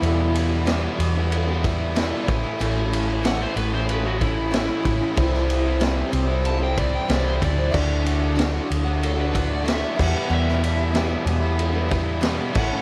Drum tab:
CC |----------------|----------------|----------------|x-------------x-|
RD |x-x-x-x-x-x-x-x-|x-x-x-x-x-x-x-x-|x-x-x-x-x-x-x-x-|--x-x-x-x-x-x---|
SD |----o-------o---|----o-------o---|-o--o-------o---|----o-------o---|
BD |----------o---o-|----------o---o-|o---------o---o-|o---------o---o-|

CC |--------------x-|
RD |--x-x-x-x-x-x---|
SD |-o--o-------o---|
BD |----------o---o-|